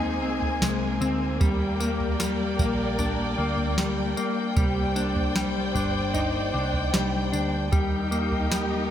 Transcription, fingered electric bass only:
0.00 0.22 D#2 medium
0.22 0.60 C2 medium
0.62 0.99 C2 medium
1.01 1.39 D2 loud
1.41 2.55 D#2 loud
2.59 3.34 A#1 medium
3.38 4.13 D2 medium
4.57 5.71 C2 loud
5.75 6.50 G1 medium
6.54 6.92 C2 medium
6.94 7.31 C2 medium
7.33 7.70 D2 medium
7.73 8.91 D#2 loud

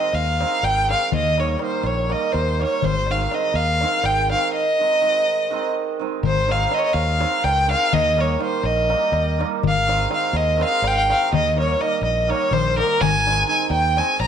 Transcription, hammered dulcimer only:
0.00 0.39 D#3 medium
0.00 0.39 G#3 medium
0.40 0.87 D#3 medium
0.40 0.88 G#3 medium
0.40 0.53 C4 medium
0.40 0.54 D#4 medium
0.89 1.18 D#3 medium
0.89 1.18 G#3 medium
0.89 1.03 C4 medium
0.89 1.03 D#4 medium
1.37 1.59 D#3 medium
1.37 1.60 G3 medium
1.37 1.51 A#3 soft
1.37 1.52 D#4 medium
1.60 2.08 D#3 medium
1.60 2.08 G3 soft
1.60 1.74 A#3 medium
1.60 1.74 D#4 medium
2.09 2.58 D#3 medium
2.09 2.59 G3 medium
2.09 2.23 A#3 medium
2.09 2.23 D#4 medium
2.60 2.88 D#3 medium
2.60 2.88 G3 soft
2.60 2.74 A#3 medium
2.60 2.74 D#4 medium
3.10 3.31 D#3 medium
3.10 3.32 G#3 medium
3.10 3.22 C4 soft
3.10 3.23 D#4 medium
3.32 3.81 D#3 medium
3.32 3.81 G#3 medium
3.32 3.45 C4 medium
3.32 3.45 D#4 medium
3.82 4.30 D#3 medium
3.82 4.32 G#3 medium
3.82 3.95 C4 medium
3.82 3.95 D#4 medium
4.32 4.58 D#3 medium
4.32 4.58 G#3 soft
4.32 4.45 C4 medium
4.32 4.45 D#4 medium
4.79 5.00 D#3 medium
4.79 5.01 G#3 soft
4.79 4.92 C4 medium
4.79 4.93 D#4 medium
5.01 5.49 D#3 medium
5.01 5.50 G#3 medium
5.01 5.14 C4 medium
5.01 5.14 D#4 medium
5.50 5.98 D#3 medium
5.50 6.00 G#3 medium
5.50 5.64 C4 medium
5.50 5.64 D#4 medium
5.99 6.28 D#3 medium
5.99 6.28 G#3 medium
5.99 6.13 C4 medium
5.99 6.14 D#4 medium
6.47 6.68 D#3 medium
6.47 6.68 G#3 medium
6.47 6.61 C4 medium
6.47 6.61 D#4 medium
6.69 7.17 D#3 medium
6.69 7.18 G#3 medium
6.69 6.83 C4 medium
6.69 6.84 D#4 medium
7.18 7.67 D#3 medium
7.18 7.67 G#3 medium
7.18 7.33 C4 medium
7.18 7.33 D#4 medium
7.68 7.98 D#3 medium
7.68 7.98 G#3 medium
7.68 7.82 C4 medium
7.68 7.83 D#4 medium
8.16 8.37 D#3 medium
8.16 8.38 G3 medium
8.16 8.31 A#3 medium
8.16 8.31 D#4 medium
8.38 8.88 D#3 medium
8.38 8.88 G3 medium
8.38 8.53 A#3 medium
8.38 8.53 D#4 medium
8.89 9.37 D#3 medium
8.89 9.38 G3 medium
8.89 9.03 A#3 medium
8.89 9.03 D#4 medium
9.38 9.67 D#3 medium
9.38 9.67 G3 medium
9.38 9.52 A#3 medium
9.38 9.53 D#4 medium
9.87 10.08 D#3 medium
9.87 10.09 G#3 medium
9.87 10.00 C4 medium
9.87 10.01 D#4 medium
10.09 10.56 D#3 medium
10.09 10.58 G#3 medium
10.09 10.23 C4 medium
10.09 10.23 D#4 medium
10.57 11.08 D#3 medium
10.57 11.08 G#3 medium
10.57 10.72 C4 medium
10.57 10.72 D#4 medium
11.09 11.37 D#3 medium
11.09 11.37 G#3 medium
11.09 11.23 C4 medium
11.09 11.23 D#4 medium
11.56 11.80 D#3 medium
11.56 11.81 G3 medium
11.56 11.70 A#3 medium
11.56 11.70 D#4 medium
11.81 12.26 D#3 medium
11.81 12.27 G3 medium
11.81 11.93 A#3 medium
11.81 11.94 D#4 medium
12.27 12.76 D#3 medium
12.27 12.76 G3 medium
12.27 12.41 A#3 medium
12.27 12.42 D#4 medium
12.77 13.05 D#3 medium
12.77 13.05 G3 medium
12.77 12.91 A#3 medium
12.77 12.91 D#4 medium
13.26 13.46 D#3 medium
13.26 13.47 G#3 medium
13.26 13.39 C4 soft
13.26 13.39 D#4 medium
13.47 13.95 D#3 medium
13.47 13.95 G#3 medium
13.47 13.61 C4 medium
13.47 13.61 D#4 medium
13.96 14.27 D#3 medium
13.96 14.27 G#3 medium
13.96 14.10 C4 medium
13.96 14.10 D#4 medium

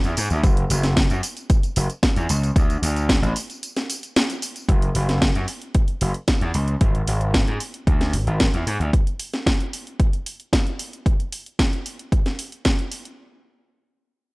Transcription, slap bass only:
0.04 0.14 E2 medium
0.17 0.28 G#2 medium
0.31 0.41 D2 medium
0.43 0.64 F#1 loud
0.70 1.05 F#1 loud
1.10 1.20 F#2 medium
1.77 1.87 F#1 loud
2.16 2.26 E2 loud
2.30 2.50 C#2 medium
2.56 2.76 D2 loud
2.82 3.17 D2 medium
3.22 3.32 A1 medium
4.69 4.89 F#1 medium
4.95 5.30 F#1 medium
5.35 5.45 F#2 medium
6.01 6.12 F#1 medium
6.41 6.51 E2 loud
6.54 6.75 C#2 medium
6.81 7.01 G#1 loud
7.08 7.43 G#1 medium
7.47 7.57 G#2 medium
7.87 8.15 D2 medium
8.13 8.24 G#1 medium
8.27 8.47 G#1 medium
8.54 8.64 E2 medium
8.67 8.77 G#2 medium
8.80 8.90 D2 medium

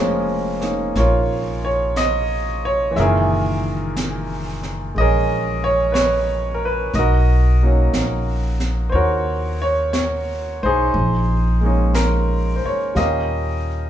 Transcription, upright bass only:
0.00 0.91 F1 medium
0.95 2.92 A#1 medium
2.97 4.91 F#1 medium
4.96 6.90 A#1 medium
6.94 7.89 B1 medium
7.93 8.89 A#1 medium
8.93 10.59 D#2 medium
10.63 10.92 B1 medium
10.94 12.60 A#1 medium
12.65 muted upright bass stroke soft
12.95 13.90 D#2 medium

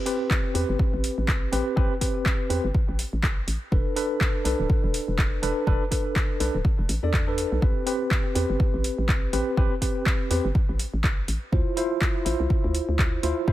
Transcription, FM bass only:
0.55 0.65 E2 medium
0.69 0.76 G1 loud
0.94 1.10 A1 loud
1.18 1.48 A1 medium
1.53 1.62 A1 medium
1.77 1.87 A1 loud
2.50 2.60 E2 medium
2.64 2.71 G1 loud
2.89 3.05 A1 medium
3.13 3.43 A1 medium
3.48 3.58 A1 medium
3.72 3.82 E1 loud
4.45 4.55 B1 medium
4.59 4.67 D1 loud
4.84 5.00 E1 loud
5.08 5.38 E1 medium
5.43 5.53 E1 medium
5.67 5.77 E1 loud
6.40 6.50 B1 medium
6.55 6.62 D1 loud
6.79 6.89 E1 loud
6.89 6.99 A1 loud
7.03 7.45 E2 medium
7.52 7.59 B1 loud
7.62 7.72 A1 loud
8.36 8.45 E2 medium
8.50 8.57 G1 loud
8.74 8.90 A1 medium
8.98 9.28 A1 loud
9.33 9.43 A1 medium
9.57 9.67 A1 loud
10.31 10.41 E2 medium
10.45 10.52 G1 loud
10.69 10.85 A1 medium
10.94 11.23 A1 medium
11.28 11.38 A1 medium
11.53 11.62 D2 loud
12.26 12.36 A1 medium
12.40 12.47 C2 loud
12.64 12.80 D2 loud
12.89 13.18 D2 medium
13.23 13.33 D2 medium
13.48 13.53 D2 loud

